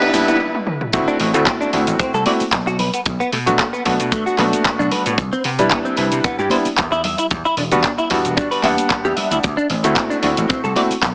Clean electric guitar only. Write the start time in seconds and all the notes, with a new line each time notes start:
0.02 B3
0.28 B3
1.08 D4
1.20 C4
1.34 A3
1.46 C4
1.61 D4
1.73 D4
2.00 C4
2.14 A4
2.27 D5
2.67 F#4
2.79 B4
2.94 B3
3.20 B3
3.32 A3
3.46 F#3
3.59 A3
3.73 B3
3.85 B3
4.12 A3
4.26 F#4
4.39 B4
4.79 D4
4.92 B4
5.06 B3
5.33 C4
5.45 B3
5.59 G3
5.71 B3
5.85 C4
5.98 C4
6.25 B3
6.39 G4
6.51 C5
6.92 E4
7.05 E5
7.19 E4
7.45 E4
7.58 D4
7.72 B3
7.84 D4
7.98 E4
8.11 E4
8.37 D4
8.51 B4
8.64 E5
9.05 G4
9.16 E5
9.31 E4
9.57 D4
9.70 C4
9.84 A3
9.96 C4
10.10 D4
10.22 D4
10.49 C4
10.64 A4
10.76 D5